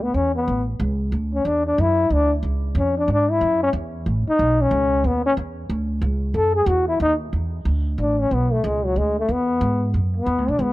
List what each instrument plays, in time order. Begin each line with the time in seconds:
Already playing: upright bass D2
0.03 trombone B3
0.14 upright bass E2, trombone C#4
0.36 trombone B3
0.48 upright bass A1
0.80 upright bass C#2
1.12 upright bass D2
1.34 trombone C#4
1.45 upright bass E2, trombone D4
1.67 trombone D4
1.78 upright bass F#2, trombone E4
2.10 upright bass D2, trombone D4
2.43 upright bass C#2
2.75 upright bass F2, trombone C#4
2.98 trombone D4
3.08 upright bass G#2
3.12 trombone D4
3.31 trombone E4
3.41 upright bass F#2
3.63 trombone C#4
3.73 upright bass E2
4.06 upright bass A1
4.27 trombone D#4, muted upright bass stroke
4.39 upright bass B1
4.62 trombone C#4
4.71 upright bass C#2
5.04 upright bass D#2, trombone B3
5.26 trombone C#4
5.37 upright bass E2
5.69 upright bass D2
6.02 upright bass C#2
6.34 upright bass F#2, trombone A4
6.55 trombone G#4
6.66 upright bass E2, trombone F#4
6.89 trombone E4
7.00 upright bass D#2, trombone D#4
7.33 upright bass E2
7.65 upright bass D2
7.98 upright bass A1, trombone D4
8.20 trombone C#4
8.31 upright bass B1, trombone B3
8.53 trombone A3
8.64 upright bass C#2, trombone G#3
8.85 trombone F#3
8.96 upright bass D2, trombone G#3
9.19 trombone A3
9.29 upright bass E2, trombone B3
9.61 upright bass G#2
9.94 upright bass F#2
10.17 trombone B3
10.26 upright bass E2
10.38 upright bass D2
10.48 upright bass B1, trombone D4
10.59 upright bass C#2, trombone B3